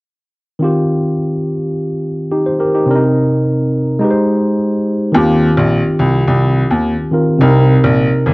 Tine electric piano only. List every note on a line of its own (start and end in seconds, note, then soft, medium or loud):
0.59 2.83 D#3 medium
0.59 2.84 C4 medium
0.59 2.29 F4 medium
0.64 2.29 G4 medium
2.32 2.46 D#4 medium
2.32 2.46 G4 medium
2.46 2.59 C5 medium
2.60 2.73 G4 medium
2.60 2.74 A#4 medium
2.75 2.94 D#4 medium
2.75 3.01 G4 medium
2.86 3.98 C3 medium
2.86 3.99 C4 medium
2.86 2.95 D4 medium
2.91 4.00 A#4 medium
2.96 3.99 D#4 medium
3.99 5.11 G#3 medium
3.99 5.12 D#4 medium
3.99 5.13 G4 medium
4.04 4.09 B4 medium
4.10 5.17 C5 medium
5.12 7.07 D#3 medium
5.12 7.08 C4 medium
5.12 7.09 F4 medium
5.17 7.10 G4 medium
7.11 7.40 D#3 medium
7.11 7.39 C4 medium
7.11 7.41 F4 medium
7.11 7.42 A#4 medium
7.38 8.34 C3 medium
7.38 8.34 C4 medium
7.38 8.34 D#4 medium
7.43 8.34 A#4 medium